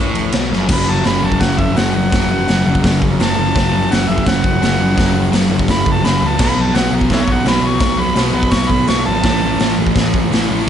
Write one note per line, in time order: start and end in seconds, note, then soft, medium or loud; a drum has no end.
0.00 0.32 A1 medium
0.00 0.34 A2 loud
0.15 ride medium
0.32 0.51 B1 medium
0.32 0.52 B2 loud
0.32 snare loud
0.32 ride medium
0.52 0.69 F#1 medium
0.52 0.67 F#2 loud
0.52 snare medium
0.69 1.01 F#1 medium
0.69 1.03 F#2 medium
0.69 0.89 C#3 medium
0.69 0.86 F#3 loud
0.69 0.92 B5 loud
0.69 kick loud
0.69 snare loud
0.69 crash loud
0.86 1.04 C#3 medium
0.86 1.06 F#3 medium
0.86 1.09 A5 loud
1.03 1.22 F#1 medium
1.03 1.74 F#2 loud
1.03 1.24 C#3 loud
1.03 1.21 F#3 loud
1.03 snare loud
1.03 open hi-hat medium
1.08 1.26 B5 medium
1.21 1.39 F#1 medium
1.21 1.75 C#3 medium
1.21 1.78 F#3 medium
1.21 1.44 A5 medium
1.32 kick medium
1.40 1.57 F#1 medium
1.40 1.60 F#5 medium
1.40 kick loud
1.40 snare loud
1.40 open hi-hat medium
1.58 1.75 F#1 medium
1.58 1.79 E5 loud
1.58 kick medium
1.74 1.94 F#1 medium
1.74 2.11 F#2 medium
1.74 1.96 C#3 medium
1.74 1.93 F#3 medium
1.74 1.95 F#5 medium
1.74 snare loud
1.74 open hi-hat medium
1.93 2.11 F#1 medium
1.93 2.12 C#3 medium
1.93 2.15 F#3 medium
1.93 2.99 F#5 loud
2.12 2.44 F#1 medium
2.12 2.47 F#2 medium
2.12 2.32 C#3 loud
2.12 2.29 F#3 loud
2.12 kick loud
2.12 snare loud
2.12 open hi-hat medium
2.29 2.51 F#3 medium
2.33 2.49 C#3 medium
2.48 2.64 F#1 medium
2.48 3.19 F#2 loud
2.48 2.68 C#3 loud
2.48 2.66 F#3 loud
2.48 snare loud
2.48 open hi-hat medium
2.66 2.82 F#1 medium
2.66 3.20 C#3 medium
2.66 3.22 F#3 medium
2.75 kick medium
2.84 3.00 F#1 loud
2.84 kick loud
2.84 snare loud
2.84 open hi-hat medium
3.02 3.18 F#1 loud
3.02 kick medium
3.19 3.36 F#1 loud
3.19 3.55 F#2 medium
3.19 3.40 C#3 medium
3.19 3.37 F#3 medium
3.19 3.94 A5 loud
3.19 snare loud
3.19 open hi-hat medium
3.37 3.53 F#1 medium
3.37 3.56 C#3 medium
3.37 3.58 F#3 medium
3.55 3.87 F#1 medium
3.55 3.91 F#2 medium
3.55 3.75 C#3 medium
3.55 3.72 F#3 loud
3.55 kick loud
3.55 snare loud
3.55 open hi-hat medium
3.73 3.92 C#3 medium
3.73 3.94 F#3 medium
3.91 4.07 F#1 medium
3.91 4.61 F#2 loud
3.91 4.11 C#3 loud
3.91 4.08 F#3 loud
3.91 4.10 F#5 loud
3.91 snare loud
3.91 open hi-hat medium
4.09 4.25 F#1 medium
4.09 4.62 C#3 medium
4.09 4.65 F#3 medium
4.09 4.26 E5 medium
4.18 kick medium
4.26 4.42 F#1 medium
4.26 5.30 F#5 loud
4.26 kick loud
4.26 snare loud
4.26 open hi-hat medium
4.44 4.60 F#1 medium
4.44 kick medium
4.61 4.77 F#1 medium
4.61 4.94 F#2 medium
4.61 4.81 C#3 medium
4.61 4.78 F#3 medium
4.61 snare loud
4.61 open hi-hat medium
4.79 4.95 F#1 medium
4.79 4.97 C#3 medium
4.79 4.99 F#3 medium
4.96 5.29 F#1 medium
4.96 5.30 F#2 medium
4.96 5.16 C#3 medium
4.96 5.14 F#3 loud
4.96 kick loud
4.96 snare loud
4.96 open hi-hat medium
5.14 5.32 C#3 medium
5.14 5.34 F#3 medium
5.31 5.48 F#1 medium
5.31 5.68 F#2 medium
5.31 5.52 C#3 medium
5.31 5.49 F#3 loud
5.31 snare loud
5.31 open hi-hat medium
5.50 5.66 F#1 loud
5.50 6.04 C#3 medium
5.50 6.06 F#3 medium
5.59 kick medium
5.68 5.84 F#1 medium
5.68 5.87 B5 loud
5.68 kick loud
5.68 snare loud
5.68 open hi-hat medium
5.86 6.02 F#1 loud
5.86 kick medium
5.91 6.07 A5 loud
6.02 6.20 F#1 medium
6.02 6.38 F#2 medium
6.02 6.23 C#3 medium
6.02 6.28 B5 loud
6.02 snare loud
6.02 open hi-hat medium
6.07 6.20 F#3 medium
6.21 6.38 C#2 medium
6.21 6.37 C#3 medium
6.21 6.40 F#3 medium
6.27 6.42 A5 loud
6.37 6.71 B1 loud
6.37 6.72 B2 medium
6.37 6.58 F#3 loud
6.37 6.55 B3 loud
6.37 kick loud
6.37 snare loud
6.37 crash loud
6.44 6.62 B5 loud
6.55 6.74 F#3 medium
6.55 6.76 B3 medium
6.61 6.77 A5 loud
6.73 6.91 B1 medium
6.73 7.43 B2 loud
6.73 6.94 F#3 loud
6.73 6.93 F#5 loud
6.73 snare loud
6.73 open hi-hat medium
6.77 6.91 B3 loud
6.91 7.08 B1 medium
6.91 7.44 F#3 medium
6.91 7.46 B3 medium
7.01 kick medium
7.10 7.26 B1 medium
7.10 7.22 E4 medium
7.10 7.22 A4 medium
7.10 7.34 C#5 loud
7.10 kick loud
7.10 snare loud
7.10 open hi-hat medium
7.28 7.44 B1 loud
7.28 kick medium
7.33 7.47 F#5 loud
7.44 7.61 B1 medium
7.44 7.79 B2 medium
7.44 7.64 F#3 medium
7.44 7.61 B3 medium
7.44 snare loud
7.44 open hi-hat medium
7.48 7.68 B5 loud
7.61 7.78 B1 loud
7.61 7.83 B3 medium
7.66 7.81 F#3 medium
7.66 8.02 C#6 loud
7.80 8.13 B1 loud
7.80 8.13 B2 loud
7.80 8.00 F#3 loud
7.80 kick loud
7.80 snare loud
7.80 open hi-hat medium
7.84 7.96 B3 loud
7.97 8.14 F#3 medium
7.97 8.16 B3 medium
7.97 8.18 B5 loud
8.15 8.32 B1 medium
8.15 8.52 B2 loud
8.15 8.36 F#3 loud
8.15 8.33 B3 loud
8.15 snare loud
8.15 open hi-hat medium
8.33 8.50 B1 medium
8.33 8.88 F#3 medium
8.33 8.90 B3 medium
8.33 8.42 F#5 medium
8.33 8.53 B5 loud
8.43 kick medium
8.51 8.68 B1 loud
8.51 8.72 C#6 loud
8.51 kick loud
8.51 snare loud
8.51 open hi-hat medium
8.70 8.86 B1 medium
8.70 8.88 B5 loud
8.70 kick medium
8.87 9.04 B1 medium
8.87 9.23 B2 medium
8.87 9.08 F#3 medium
8.87 9.04 B3 medium
8.87 9.05 C#6 loud
8.87 snare loud
8.87 open hi-hat medium
9.05 9.23 G#1 medium
9.05 9.25 F#3 medium
9.05 9.23 B3 medium
9.05 9.76 A5 loud
9.23 9.56 A1 loud
9.23 9.59 A2 medium
9.23 9.46 E3 loud
9.23 9.42 A3 loud
9.23 kick loud
9.23 snare loud
9.23 open hi-hat medium
9.42 9.61 E3 medium
9.42 9.63 A3 medium
9.59 9.76 A1 medium
9.59 10.30 A2 loud
9.59 9.82 E3 loud
9.59 9.77 A3 loud
9.59 snare loud
9.59 open hi-hat medium
9.78 9.94 A1 medium
9.78 10.34 A3 medium
9.82 10.31 E3 medium
9.87 kick medium
9.96 10.12 A1 medium
9.96 kick loud
9.96 snare loud
9.96 open hi-hat medium
10.14 10.30 A1 loud
10.14 kick medium
10.31 10.47 A1 medium
10.31 10.66 A2 medium
10.31 10.51 E3 medium
10.31 10.49 A3 medium
10.31 snare loud
10.31 open hi-hat medium
10.49 10.65 A1 medium
10.49 10.68 E3 medium
10.49 10.69 A3 medium